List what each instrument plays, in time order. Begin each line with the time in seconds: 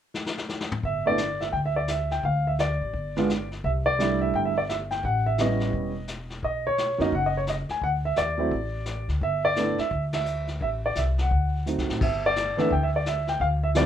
0.14 snare
0.26 snare
0.38 snare
0.49 snare
0.60 snare
0.71 mid tom
0.83 upright bass G1, grand piano E5, brush sweep, kick
1.06 grand piano A3 B3 D4 E4 D5
1.18 snare, hi-hat pedal
1.41 grand piano E5, snare
1.52 upright bass D2, grand piano G5, brush sweep, kick
1.66 grand piano E5
1.76 grand piano D5
1.88 grand piano E5, snare, hi-hat pedal
2.11 grand piano G5, snare
2.24 upright bass D2, grand piano F5, brush sweep, kick
2.47 grand piano E5
2.59 grand piano D5, snare, hi-hat pedal
2.81 upright bass A1
2.93 upright bass G1, brush sweep, kick
3.16 grand piano G#3 B3 D4 F4, snare
3.29 snare, hi-hat pedal
3.51 snare
3.64 upright bass C2, grand piano E5, brush sweep, kick
3.86 grand piano D5
3.99 grand piano G3 A3 D4 E4, snare, hi-hat pedal
4.21 grand piano E5
4.34 upright bass G1, grand piano G5, brush sweep, kick
4.45 grand piano E5
4.58 grand piano D5
4.69 grand piano E5, snare, hi-hat pedal
4.91 grand piano G5, snare
5.03 upright bass A1, grand piano F#5, brush sweep, kick
5.26 grand piano E5
5.38 grand piano G3 B3 C#4 E4 D#5, snare, hi-hat pedal
5.60 snare
5.73 upright bass E1, brush sweep, kick
6.08 snare, hi-hat pedal
6.30 snare
6.43 upright bass B1, grand piano D#5, brush sweep, kick
6.67 grand piano C#5
6.78 snare, hi-hat pedal
6.98 upright bass F#2, grand piano F#3 A#3 C#4 D#4 D#5, snare
7.12 upright bass F#1, grand piano F#5, brush sweep, kick
7.26 grand piano D#5
7.37 grand piano C#5
7.47 grand piano D#5, snare, hi-hat pedal
7.69 grand piano G#5, snare
7.81 upright bass D2, grand piano F#5, brush sweep, kick
8.05 grand piano E5
8.16 upright bass D#2, grand piano D5, snare, hi-hat pedal
8.38 grand piano F#3 A3 C4 E4
8.51 upright bass A1, brush sweep, kick
8.86 snare, hi-hat pedal
9.08 upright bass D2, snare
9.21 upright bass G1, grand piano E5, brush sweep, kick
9.45 grand piano D5
9.56 grand piano A3 B3 D4 E4, snare, hi-hat pedal
9.78 grand piano E5, muted upright bass stroke, snare
9.91 upright bass D2, brush sweep, kick
10.13 grand piano E5, snare, ride
10.25 hi-hat pedal
10.47 snare
10.60 upright bass A1, grand piano E5, brush sweep, kick
10.86 grand piano D5
10.95 upright bass C2, grand piano E5, snare, hi-hat pedal
11.18 grand piano F#5, snare
11.31 upright bass D2, brush sweep, kick
11.66 grand piano F#3 A3 C4 D#4, hi-hat pedal
11.77 upright bass C2, snare
11.89 upright bass A1, snare
12.01 upright bass G1, grand piano E5, brush sweep, kick, crash
12.26 grand piano D5
12.36 snare, hi-hat pedal
12.57 grand piano E3 A3 B3 D4 E5, muted upright bass stroke, snare
12.71 upright bass D2, grand piano G5, brush sweep, kick
12.83 grand piano E5
12.96 grand piano D5
13.06 grand piano E5, snare, hi-hat pedal
13.27 grand piano G5, snare
13.40 upright bass D2, grand piano F5, brush sweep, kick
13.63 grand piano E5
13.75 grand piano F3 G3 C4 E4 D5, snare, hi-hat pedal